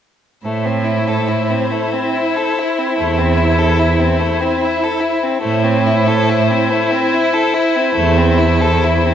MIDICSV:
0, 0, Header, 1, 5, 480
1, 0, Start_track
1, 0, Key_signature, 0, "minor"
1, 0, Tempo, 864553
1, 257, Time_signature, 12, 3, 24, 8
1, 1217, Tempo, 817439
1, 3617, Tempo, 840336
1, 4577, Tempo, 872093
1, 5227, End_track
2, 0, Start_track
2, 0, Title_t, "Violin"
2, 0, Program_c, 0, 40
2, 264, Note_on_c, 0, 72, 33
2, 3113, Note_off_c, 0, 72, 0
2, 3130, Note_on_c, 0, 72, 45
2, 5227, Note_off_c, 0, 72, 0
2, 5227, End_track
3, 0, Start_track
3, 0, Title_t, "Viola"
3, 0, Program_c, 1, 41
3, 262, Note_on_c, 1, 64, 33
3, 3112, Note_off_c, 1, 64, 0
3, 3134, Note_on_c, 1, 64, 44
3, 5227, Note_off_c, 1, 64, 0
3, 5227, End_track
4, 0, Start_track
4, 0, Title_t, "Violin"
4, 0, Program_c, 2, 40
4, 250, Note_on_c, 2, 57, 30
4, 364, Note_on_c, 2, 60, 30
4, 372, Note_off_c, 2, 57, 0
4, 470, Note_on_c, 2, 64, 31
4, 478, Note_off_c, 2, 60, 0
4, 597, Note_on_c, 2, 69, 30
4, 605, Note_off_c, 2, 64, 0
4, 713, Note_on_c, 2, 64, 31
4, 721, Note_off_c, 2, 69, 0
4, 833, Note_on_c, 2, 60, 29
4, 842, Note_off_c, 2, 64, 0
4, 955, Note_on_c, 2, 57, 30
4, 963, Note_off_c, 2, 60, 0
4, 1072, Note_on_c, 2, 60, 31
4, 1080, Note_off_c, 2, 57, 0
4, 1193, Note_on_c, 2, 64, 29
4, 1201, Note_off_c, 2, 60, 0
4, 1317, Note_on_c, 2, 69, 30
4, 1326, Note_off_c, 2, 64, 0
4, 1449, Note_on_c, 2, 64, 32
4, 1458, Note_off_c, 2, 69, 0
4, 1567, Note_on_c, 2, 60, 31
4, 1576, Note_off_c, 2, 64, 0
4, 1678, Note_off_c, 2, 60, 0
4, 1682, Note_on_c, 2, 57, 34
4, 1801, Note_on_c, 2, 60, 33
4, 1810, Note_off_c, 2, 57, 0
4, 1908, Note_on_c, 2, 64, 30
4, 1917, Note_off_c, 2, 60, 0
4, 2037, Note_on_c, 2, 69, 33
4, 2045, Note_off_c, 2, 64, 0
4, 2160, Note_on_c, 2, 64, 32
4, 2168, Note_off_c, 2, 69, 0
4, 2275, Note_on_c, 2, 60, 36
4, 2284, Note_off_c, 2, 64, 0
4, 2395, Note_on_c, 2, 57, 37
4, 2404, Note_off_c, 2, 60, 0
4, 2519, Note_on_c, 2, 60, 34
4, 2528, Note_off_c, 2, 57, 0
4, 2649, Note_on_c, 2, 64, 37
4, 2657, Note_off_c, 2, 60, 0
4, 2772, Note_on_c, 2, 69, 37
4, 2780, Note_off_c, 2, 64, 0
4, 2868, Note_on_c, 2, 64, 38
4, 2876, Note_off_c, 2, 69, 0
4, 3002, Note_on_c, 2, 60, 36
4, 3011, Note_off_c, 2, 64, 0
4, 3107, Note_off_c, 2, 60, 0
4, 3111, Note_on_c, 2, 57, 46
4, 3242, Note_on_c, 2, 60, 42
4, 3251, Note_off_c, 2, 57, 0
4, 3372, Note_on_c, 2, 64, 42
4, 3381, Note_off_c, 2, 60, 0
4, 3497, Note_on_c, 2, 69, 44
4, 3506, Note_off_c, 2, 64, 0
4, 3627, Note_on_c, 2, 64, 39
4, 3635, Note_off_c, 2, 69, 0
4, 3743, Note_on_c, 2, 60, 38
4, 3752, Note_off_c, 2, 64, 0
4, 3857, Note_on_c, 2, 57, 43
4, 3866, Note_off_c, 2, 60, 0
4, 3982, Note_on_c, 2, 60, 46
4, 3990, Note_off_c, 2, 57, 0
4, 4107, Note_on_c, 2, 64, 44
4, 4116, Note_off_c, 2, 60, 0
4, 4223, Note_on_c, 2, 69, 41
4, 4232, Note_off_c, 2, 64, 0
4, 4338, Note_on_c, 2, 64, 36
4, 4346, Note_off_c, 2, 69, 0
4, 4462, Note_on_c, 2, 60, 37
4, 4470, Note_off_c, 2, 64, 0
4, 4567, Note_off_c, 2, 60, 0
4, 4571, Note_on_c, 2, 57, 46
4, 4698, Note_on_c, 2, 60, 41
4, 4706, Note_off_c, 2, 57, 0
4, 4808, Note_on_c, 2, 64, 37
4, 4816, Note_off_c, 2, 60, 0
4, 4935, Note_on_c, 2, 69, 42
4, 4943, Note_off_c, 2, 64, 0
4, 5062, Note_on_c, 2, 64, 40
4, 5070, Note_off_c, 2, 69, 0
4, 5185, Note_on_c, 2, 60, 39
4, 5194, Note_off_c, 2, 64, 0
4, 5227, Note_off_c, 2, 60, 0
4, 5227, End_track
5, 0, Start_track
5, 0, Title_t, "Cello"
5, 0, Program_c, 3, 42
5, 258, Note_on_c, 3, 45, 37
5, 859, Note_off_c, 3, 45, 0
5, 1705, Note_on_c, 3, 40, 44
5, 2299, Note_off_c, 3, 40, 0
5, 3139, Note_on_c, 3, 45, 55
5, 3741, Note_off_c, 3, 45, 0
5, 4583, Note_on_c, 3, 40, 52
5, 5180, Note_off_c, 3, 40, 0
5, 5227, End_track
0, 0, End_of_file